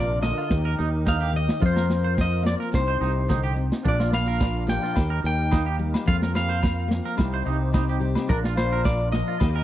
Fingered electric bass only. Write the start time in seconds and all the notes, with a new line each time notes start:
Already playing: A#1
0.51 D#2
0.80 D#2
1.62 F2
2.74 C2
3.01 C2
3.86 A#1
4.97 D#2
5.24 D#2
6.08 F2
7.19 C2
7.47 C2
8.30 A#1
9.41 D#2